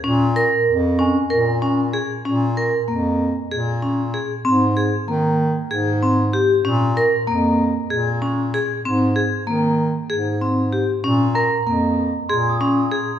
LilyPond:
<<
  \new Staff \with { instrumentName = "Glockenspiel" } { \time 7/8 \key bes \dorian \tempo 4 = 96 r4. aes''2~ | aes''8 r2. | r2. r8 | r2. r8 |
r2. r8 | r8 bes''4. c'''16 ees'''4~ ees'''16 | }
  \new Staff \with { instrumentName = "Vibraphone" } { \time 7/8 \key bes \dorian des'8 bes'4 des'8 bes'8 des'8 aes'8 | des'8 bes'8 bes4 aes'8 des'8 aes'8 | c'8 aes'8 bes4 aes'8 c'8 g'8 | des'8 bes'8 bes4 aes'8 des'8 aes'8 |
c'8 aes'8 bes4 aes'8 c'8 g'8 | des'8 bes'8 bes4 aes'8 des'8 aes'8 | }
  \new Staff \with { instrumentName = "Bass clarinet" } { \clef bass \time 7/8 \key bes \dorian bes,4 f,4 bes,4. | bes,4 f,4 bes,4. | aes,4 ees4 aes,4. | bes,4 f,4 bes,4. |
aes,4 ees4 aes,4. | bes,4 f,4 bes,4. | }
>>